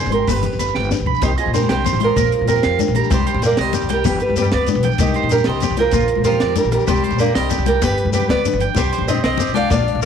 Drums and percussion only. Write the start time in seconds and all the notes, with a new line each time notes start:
0.06 shekere
0.11 closed hi-hat, high conga
0.27 kick, closed hi-hat, shekere
0.43 closed hi-hat, low conga, shekere
0.53 shekere
0.59 closed hi-hat, low conga, shekere
0.75 snare, high conga
0.84 shekere
0.91 snare, low conga, shekere
1.06 kick, low conga
1.15 shekere
1.22 kick, closed hi-hat, high conga, shekere
1.38 closed hi-hat, shekere
1.46 low conga
1.54 closed hi-hat, shekere
1.61 high conga
1.69 snare, closed hi-hat
1.85 closed hi-hat, low conga, shekere
2.00 closed hi-hat, high conga, low conga
2.16 kick, closed hi-hat, low conga, shekere
2.32 closed hi-hat
2.39 high conga
2.48 closed hi-hat, low conga, shekere
2.56 low conga
2.63 snare, closed hi-hat
2.71 low conga
2.79 closed hi-hat, high conga, low conga, shekere
2.88 low conga
2.95 closed hi-hat, low conga, shekere
3.03 low conga, shekere
3.10 kick, closed hi-hat, high conga, shekere
3.27 closed hi-hat, shekere
3.34 low conga
3.42 closed hi-hat, shekere
3.49 high conga
3.57 snare, closed hi-hat
3.73 closed hi-hat, low conga, shekere
3.89 snare, closed hi-hat, high conga, low conga
4.04 kick, closed hi-hat, low conga, shekere
4.20 closed hi-hat
4.29 high conga
4.36 closed hi-hat, low conga, shekere
4.45 low conga
4.52 snare, closed hi-hat
4.60 low conga
4.67 closed hi-hat, high conga, low conga, shekere
4.77 low conga
4.83 closed hi-hat, low conga, shekere
4.92 low conga, shekere
4.98 kick, closed hi-hat, high conga, shekere
5.14 closed hi-hat, shekere
5.24 low conga
5.29 closed hi-hat, shekere
5.38 high conga
5.44 snare, closed hi-hat
5.60 closed hi-hat, low conga, shekere
5.77 snare, closed hi-hat, high conga, low conga
5.91 kick, closed hi-hat, low conga, shekere
6.08 closed hi-hat
6.15 high conga
6.24 closed hi-hat, low conga, shekere
6.32 low conga
6.40 snare, closed hi-hat
6.48 low conga
6.56 closed hi-hat, high conga, low conga, shekere
6.64 low conga
6.71 closed hi-hat, low conga, shekere
6.79 low conga, shekere
6.87 kick, closed hi-hat, high conga, shekere
6.96 low conga, shekere
7.03 closed hi-hat, low conga
7.11 low conga, shekere
7.18 closed hi-hat, low conga, shekere
7.27 high conga
7.35 snare, closed hi-hat, shekere
7.50 closed hi-hat, low conga, shekere
7.66 closed hi-hat, high conga, low conga, shekere
7.75 low conga
7.82 kick, closed hi-hat, low conga, shekere
7.89 shekere
7.98 closed hi-hat
8.05 high conga, low conga
8.13 closed hi-hat, low conga, shekere
8.20 low conga
8.28 kick, snare, closed hi-hat, high conga
8.37 shekere
8.44 closed hi-hat, low conga, shekere
8.60 closed hi-hat, low conga, shekere
8.75 kick, closed hi-hat, high conga, shekere
8.92 closed hi-hat, shekere
8.98 low conga
9.08 closed hi-hat, shekere
9.14 high conga
9.24 snare, closed hi-hat
9.37 closed hi-hat, low conga, shekere
9.54 snare, closed hi-hat, high conga, low conga
9.70 kick, closed hi-hat, low conga, shekere
9.88 closed hi-hat
9.95 high conga
10.02 shekere